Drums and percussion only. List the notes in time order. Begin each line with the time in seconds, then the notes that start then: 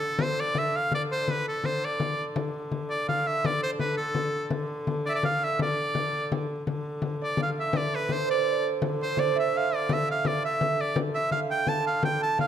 0.19 frame drum
0.37 frame drum
0.55 frame drum
0.74 frame drum
0.92 frame drum
1.28 frame drum
1.64 frame drum
1.82 frame drum
2.00 frame drum
2.36 frame drum
2.54 frame drum
2.72 frame drum
2.90 frame drum
3.09 frame drum
3.44 frame drum
3.62 frame drum
3.79 frame drum
3.97 frame drum
4.15 frame drum
4.50 frame drum
4.69 frame drum
4.87 frame drum
5.05 frame drum
5.23 frame drum
5.59 frame drum
5.77 frame drum
5.95 frame drum
6.13 frame drum
6.32 frame drum
6.67 frame drum
6.85 frame drum
7.02 frame drum
7.20 frame drum
7.37 frame drum
7.73 frame drum
7.91 frame drum
8.09 frame drum
8.28 frame drum
8.82 frame drum
9.00 frame drum
9.17 frame drum
9.36 frame drum
9.89 frame drum
10.25 frame drum
10.43 frame drum
10.61 frame drum
10.79 frame drum
10.96 frame drum
11.15 frame drum
11.31 frame drum
11.50 frame drum
11.67 frame drum
12.03 frame drum
12.39 frame drum